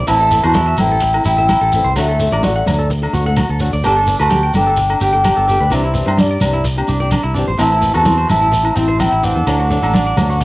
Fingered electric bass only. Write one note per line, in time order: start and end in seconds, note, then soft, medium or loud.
0.08 0.39 A1 loud
0.44 0.73 E2 medium
0.78 1.18 A1 medium
1.26 1.56 A1 medium
1.61 1.81 A1 medium
1.85 1.94 C2 medium
1.96 2.27 D2 medium
2.32 2.61 A1 medium
2.66 3.06 D2 medium
3.13 3.44 D2 medium
3.49 3.69 D2 medium
3.73 3.82 D2 medium
3.84 4.14 G1 medium
4.20 4.49 D2 medium
4.54 4.94 G1 medium
5.01 5.32 G1 medium
5.37 5.57 G1 medium
5.60 5.70 D2 medium
5.70 6.01 C2 loud
6.07 6.36 G2 medium
6.41 6.81 C2 medium
6.88 7.19 C2 medium
7.24 7.44 C2 medium
7.48 7.58 A#1 medium
7.59 7.89 A1 medium
7.95 8.25 E2 medium
8.30 8.70 A1 medium
8.77 9.07 A1 medium
9.12 9.32 A1 medium
9.36 9.45 E2 medium
9.47 9.77 D2 medium
9.82 10.12 A1 medium
10.17 10.44 D2 medium